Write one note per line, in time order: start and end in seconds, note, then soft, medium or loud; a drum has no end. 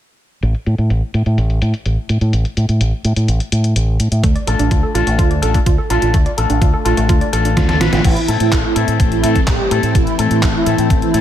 0.43 0.53 A1 medium
0.43 closed hi-hat medium
0.55 closed hi-hat soft
0.66 0.77 A2 medium
0.66 closed hi-hat medium
0.78 0.89 A2 medium
0.78 closed hi-hat soft
0.90 1.01 A1 medium
0.90 closed hi-hat medium
1.14 1.24 A2 medium
1.14 closed hi-hat medium
1.26 1.36 A2 medium
1.26 closed hi-hat medium
1.38 1.59 A1 medium
1.38 closed hi-hat medium
1.50 closed hi-hat soft
1.62 1.72 A2 medium
1.62 closed hi-hat medium
1.74 closed hi-hat soft
1.86 1.96 A1 medium
1.86 closed hi-hat medium
2.09 2.20 A2 medium
2.09 closed hi-hat medium
2.21 2.32 A2 medium
2.21 closed hi-hat soft
2.33 2.44 A1 medium
2.33 closed hi-hat medium
2.45 closed hi-hat soft
2.57 2.67 A2 medium
2.57 closed hi-hat medium
2.69 2.79 A2 medium
2.69 closed hi-hat soft
2.81 2.91 A1 medium
2.81 closed hi-hat medium
3.05 3.15 A2 medium
3.05 closed hi-hat medium
3.16 3.27 A2 medium
3.16 closed hi-hat soft
3.28 3.39 A1 medium
3.28 closed hi-hat medium
3.40 closed hi-hat soft
3.52 3.73 A2 medium
3.52 closed hi-hat medium
3.64 closed hi-hat soft
3.76 3.97 A1 medium
3.76 closed hi-hat medium
4.00 4.10 A2 medium
4.00 closed hi-hat medium
4.12 4.22 A2 medium
4.12 closed hi-hat soft
4.24 4.34 D2 medium
4.24 4.33 A3 medium
4.24 kick loud
4.24 closed hi-hat medium
4.35 4.45 D5 medium
4.35 closed hi-hat soft
4.47 4.58 A1 medium
4.47 4.92 A3 medium
4.47 4.92 D4 medium
4.47 4.92 F4 medium
4.47 4.92 A4 medium
4.47 4.57 A4 medium
4.47 closed hi-hat medium
4.59 4.70 A1 medium
4.59 4.69 D4 medium
4.59 closed hi-hat soft
4.71 4.82 D2 medium
4.71 4.80 F4 medium
4.71 kick loud
4.71 closed hi-hat medium
4.83 4.94 A4 medium
4.95 5.05 A1 medium
4.95 5.40 A3 medium
4.95 5.40 D4 medium
4.95 5.01 F4 loud
4.95 5.40 F4 medium
4.95 5.40 A4 loud
4.95 closed hi-hat medium
5.07 5.17 A1 medium
5.07 5.16 A3 loud
5.07 closed hi-hat soft
5.19 5.40 D2 medium
5.19 5.28 F4 loud
5.19 kick loud
5.19 closed hi-hat medium
5.31 5.40 D5 medium
5.31 closed hi-hat soft
5.42 5.53 A1 medium
5.42 5.58 A3 medium
5.42 5.58 D4 medium
5.42 5.58 F4 medium
5.42 5.58 A4 medium
5.42 5.52 A4 medium
5.42 closed hi-hat medium
5.54 5.64 D4 medium
5.54 kick medium
5.54 closed hi-hat soft
5.66 5.77 D2 medium
5.66 5.76 F4 medium
5.66 kick loud
5.66 closed hi-hat medium
5.78 5.90 A4 medium
5.90 6.01 A1 medium
5.90 6.15 A3 medium
5.90 6.15 D4 medium
5.90 5.96 F4 loud
5.90 6.15 F4 medium
5.90 6.15 A4 loud
5.90 closed hi-hat medium
6.02 6.12 A1 medium
6.02 6.08 F4 medium
6.02 closed hi-hat soft
6.14 6.24 D2 medium
6.14 6.23 A3 medium
6.14 kick loud
6.14 closed hi-hat medium
6.26 6.35 D5 medium
6.26 closed hi-hat soft
6.37 6.48 A1 medium
6.37 6.83 A3 medium
6.37 6.83 D4 medium
6.37 6.83 F4 medium
6.37 6.83 A4 medium
6.37 6.47 A4 medium
6.37 closed hi-hat medium
6.50 6.60 A1 medium
6.50 6.59 D4 medium
6.50 closed hi-hat soft
6.62 6.72 D2 medium
6.62 6.71 F4 medium
6.62 kick loud
6.62 closed hi-hat medium
6.74 6.85 A4 medium
6.85 6.96 A1 medium
6.85 7.30 A3 medium
6.85 7.30 D4 medium
6.85 6.91 F4 loud
6.85 7.30 F4 medium
6.85 7.30 A4 loud
6.85 closed hi-hat medium
6.97 7.08 A1 medium
6.97 7.07 A3 loud
6.97 closed hi-hat soft
7.09 7.20 D2 medium
7.09 7.19 F4 loud
7.09 kick loud
7.09 closed hi-hat medium
7.21 7.30 D5 medium
7.21 closed hi-hat soft
7.33 7.54 A1 medium
7.33 7.66 A3 medium
7.33 7.66 D4 medium
7.33 7.66 F4 medium
7.33 7.66 A4 medium
7.33 7.42 A4 medium
7.33 closed hi-hat medium
7.45 7.54 D4 medium
7.45 closed hi-hat soft
7.57 7.78 D2 loud
7.57 7.66 F4 medium
7.57 kick loud
7.57 snare medium
7.57 closed hi-hat medium
7.68 7.79 A3 medium
7.68 7.79 D4 medium
7.68 7.79 F4 medium
7.68 7.79 A4 loud
7.68 7.80 A4 medium
7.68 snare medium
7.68 closed hi-hat soft
7.80 7.91 A1 medium
7.80 8.03 A3 medium
7.80 8.03 D4 medium
7.80 7.86 F4 loud
7.80 8.03 F4 medium
7.80 8.03 B4 medium
7.80 snare medium
7.80 closed hi-hat medium
7.93 8.03 A1 medium
7.93 7.98 F4 medium
7.93 snare medium
7.93 closed hi-hat soft
8.04 8.15 A1 medium
8.04 11.21 E3 medium
8.04 11.21 A3 medium
8.04 11.21 C4 medium
8.04 8.29 E4 loud
8.04 kick loud
8.04 closed hi-hat medium
8.04 crash medium
8.16 closed hi-hat soft
8.28 8.39 A2 medium
8.28 8.73 A3 medium
8.28 8.73 C4 medium
8.28 8.73 E4 medium
8.28 8.73 A4 medium
8.28 closed hi-hat medium
8.40 8.51 A2 medium
8.40 8.56 E4 medium
8.40 closed hi-hat medium
8.52 8.63 A1 medium
8.52 kick loud
8.52 clap loud
8.52 closed hi-hat medium
8.64 8.96 E4 medium
8.76 8.86 A2 medium
8.76 9.21 A3 medium
8.76 9.21 C4 medium
8.76 9.21 E4 medium
8.76 9.21 A4 medium
8.76 closed hi-hat medium
8.88 8.98 A2 medium
8.88 closed hi-hat medium
9.00 9.20 A1 medium
9.00 kick loud
9.00 closed hi-hat medium
9.12 9.36 E4 loud
9.12 closed hi-hat soft
9.23 9.34 A2 medium
9.23 9.39 A3 medium
9.23 9.39 C4 medium
9.23 9.39 E4 medium
9.23 9.39 A4 loud
9.23 closed hi-hat medium
9.35 kick medium
9.35 closed hi-hat medium
9.47 9.58 A1 medium
9.47 9.80 G4 medium
9.47 kick loud
9.47 clap loud
9.47 closed hi-hat medium
9.71 9.82 A2 medium
9.71 9.96 A3 medium
9.71 9.96 C4 medium
9.71 9.96 E4 medium
9.71 9.96 A4 loud
9.71 closed hi-hat medium
9.83 9.93 A2 medium
9.83 closed hi-hat soft
9.95 10.05 A1 medium
9.95 10.19 E4 loud
9.95 kick loud
9.95 closed hi-hat medium
10.07 closed hi-hat soft
10.18 10.29 A2 medium
10.18 10.64 A3 medium
10.18 10.64 C4 medium
10.18 10.64 E4 medium
10.18 10.64 A4 medium
10.18 closed hi-hat medium
10.31 10.41 A2 medium
10.31 10.47 E4 medium
10.31 closed hi-hat medium
10.43 10.53 A1 medium
10.43 kick loud
10.43 clap loud
10.43 closed hi-hat medium
10.55 10.87 E4 loud
10.66 10.77 A2 medium
10.66 11.11 A3 medium
10.66 11.11 C4 medium
10.66 11.11 E4 medium
10.66 11.11 A4 medium
10.66 closed hi-hat medium
10.78 10.89 A2 medium
10.78 closed hi-hat medium
10.90 11.01 A1 medium
10.90 kick loud
10.90 closed hi-hat medium
11.02 11.21 E4 loud
11.02 closed hi-hat soft
11.14 11.21 A2 medium
11.14 11.21 A3 medium
11.14 11.21 C4 medium
11.14 11.21 E4 medium
11.14 11.21 A4 loud
11.14 closed hi-hat medium